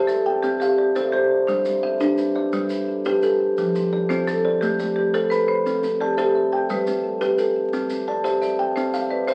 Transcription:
Already playing: kalimba G4 C5 D5 A5
0.07 marimba A4, kalimba E5, maracas
0.26 kalimba G5 A5
0.42 kalimba C4 E5, marimba G4, maracas
0.60 marimba G4, kalimba E5 F5, maracas
0.78 marimba G4, kalimba D5
0.96 marimba A4, kalimba C5 E5, maracas
1.12 marimba G4, kalimba C5 D5
1.31 kalimba D5
1.47 kalimba G3 C5, marimba D4, maracas
1.65 kalimba G3, maracas
1.83 kalimba A4 E5
2.00 kalimba D4 G4 B4, maracas
2.18 kalimba B4, maracas
2.35 kalimba D5 E5
2.53 kalimba G3 B4, maracas
2.70 kalimba B4, maracas
2.88 kalimba A4
3.05 kalimba G4 B4, maracas
3.23 kalimba G4 A4, maracas
3.40 kalimba A4
3.58 kalimba F3 G4, maracas
3.75 kalimba F3, maracas
3.93 kalimba G4 D5
4.09 kalimba C4 F4 A4, marimba C5, maracas
4.27 marimba A4, kalimba A4, maracas
4.45 kalimba C5 D5
4.61 kalimba A3 A4, marimba G4, maracas
4.79 kalimba A3 D5, maracas
4.96 marimba G4, kalimba B4
5.14 kalimba A4 C5, marimba A4, maracas
5.30 kalimba A4 B5, marimba B4, maracas
5.48 marimba C5, kalimba B5
5.66 kalimba C4 A4, maracas
5.83 kalimba C4, maracas
6.00 marimba G4, kalimba D5 A5
6.17 kalimba G4 C5 E5, marimba A4, maracas
6.35 kalimba E5
6.52 marimba G4, kalimba G5 A5
6.69 kalimba G3 E5, marimba B4, maracas
6.86 kalimba G3 C4, maracas
7.04 kalimba A4
7.21 kalimba G4 B4, maracas
7.38 kalimba G4 A4, maracas
7.56 kalimba A4
7.73 kalimba C4 G4, maracas
7.90 kalimba C4, maracas
8.08 kalimba D5 A5
8.24 kalimba G4 C5 E5, maracas
8.42 marimba D5, kalimba E5, maracas
8.59 kalimba G5 A5
8.76 kalimba C4 E5, marimba C5, maracas
8.94 kalimba E5 F5, maracas
9.10 marimba B4, kalimba D5
9.27 marimba C5, kalimba C5 E5, maracas

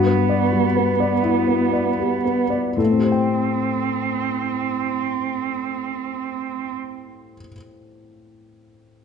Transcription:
Already playing: grand piano G2 F#4, cello B3
0.06 grand piano B3
0.29 grand piano D5
0.52 grand piano G3
0.76 grand piano B3
1.00 grand piano D5
1.23 grand piano E4
1.47 grand piano B3
1.73 grand piano D5
2.00 grand piano G4
2.25 grand piano B3
2.50 grand piano D5
2.77 grand piano A2 A4, cello C4
2.84 grand piano A3
2.92 grand piano C4
2.99 grand piano G4
3.05 grand piano C5
3.12 grand piano G5

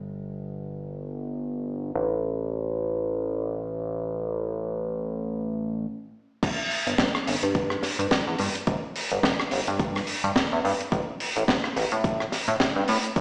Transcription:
Already playing: analog synth bass G1
1.95 analog synth bass A1
6.43 analog synth bass G1, kick, closed hi-hat, crash
6.71 open hi-hat
6.87 analog synth bass G1, closed hi-hat
6.98 analog synth bass G1, kick, snare, closed hi-hat
7.15 cross-stick
7.27 analog synth bass G1, open hi-hat
7.43 analog synth bass G2, closed hi-hat
7.55 kick, closed hi-hat
7.70 cross-stick
7.83 snare, open hi-hat
7.99 analog synth bass G2, closed hi-hat
8.11 kick, snare, closed hi-hat
8.27 analog synth bass E2
8.38 analog synth bass G2, open hi-hat
8.55 closed hi-hat
8.67 analog synth bass G1, kick, closed hi-hat
8.96 open hi-hat
9.11 analog synth bass G1, closed hi-hat
9.23 analog synth bass G1, kick, snare, closed hi-hat
9.40 cross-stick
9.51 analog synth bass G1, open hi-hat
9.67 analog synth bass G2, closed hi-hat
9.79 kick, closed hi-hat
9.95 cross-stick, open hi-hat
10.07 open hi-hat
10.24 analog synth bass G2, closed hi-hat
10.36 kick, snare, closed hi-hat
10.52 analog synth bass E2
10.65 analog synth bass G2, open hi-hat
10.81 closed hi-hat
10.92 analog synth bass A1, kick, closed hi-hat
11.20 open hi-hat
11.36 analog synth bass A1, closed hi-hat
11.48 analog synth bass A1, kick, snare, closed hi-hat
11.64 cross-stick
11.76 analog synth bass A1, open hi-hat
11.92 analog synth bass A2, closed hi-hat
12.04 kick, closed hi-hat
12.20 cross-stick
12.32 snare, open hi-hat
12.48 analog synth bass A2, closed hi-hat
12.60 kick, snare, closed hi-hat
12.76 analog synth bass G2
12.88 analog synth bass A2, open hi-hat
13.04 closed hi-hat
13.16 analog synth bass A1, kick, closed hi-hat

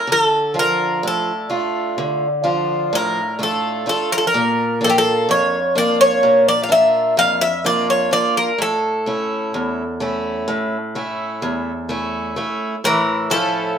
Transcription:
0.07 steel-string acoustic guitar D3
0.12 bouzouki A4
0.54 steel-string acoustic guitar F3 D4 F4
0.59 bouzouki A#4
1.03 steel-string acoustic guitar A2
1.07 bouzouki A4
1.50 steel-string acoustic guitar A3 D4 F4
1.98 steel-string acoustic guitar D3
2.44 steel-string acoustic guitar F3 D4 F4
2.93 steel-string acoustic guitar A2, bouzouki A#4
3.39 steel-string acoustic guitar A3 D4 F4
3.43 bouzouki A4
3.86 steel-string acoustic guitar A3 D4 F4, bouzouki A4
4.12 bouzouki A#4
4.18 bouzouki A4
4.27 bouzouki A#4
4.34 steel-string acoustic guitar A#2
4.81 steel-string acoustic guitar A#3 D4 F4, bouzouki A4
4.90 bouzouki G4
4.98 bouzouki A4
5.29 steel-string acoustic guitar F2, bouzouki C#5
5.75 steel-string acoustic guitar A#3 D4 F4, bouzouki D5
6.01 bouzouki C#5
6.23 steel-string acoustic guitar A#2
6.48 bouzouki D5
6.63 bouzouki F5
6.69 steel-string acoustic guitar A#3 D4 F4, bouzouki E5
7.17 steel-string acoustic guitar F2, bouzouki F5
7.41 bouzouki E5
7.64 steel-string acoustic guitar A#3 D4 F4, bouzouki D5
7.90 bouzouki C#5
8.11 steel-string acoustic guitar A#3 D4 F4, bouzouki D5
8.37 bouzouki A#4
8.58 steel-string acoustic guitar A2, bouzouki A4
9.06 steel-string acoustic guitar A3 C#4 E4
9.54 steel-string acoustic guitar E2
10.00 steel-string acoustic guitar A3 C#4 E4
10.48 steel-string acoustic guitar A2
10.95 steel-string acoustic guitar A3 C#4 E4
11.42 steel-string acoustic guitar E2
11.89 steel-string acoustic guitar A3 C#4 E4
12.36 steel-string acoustic guitar A3 C#4 E4
12.84 steel-string acoustic guitar A2, bouzouki E3 A#4
13.30 bouzouki F3 A4, steel-string acoustic guitar A3 C#4 E4

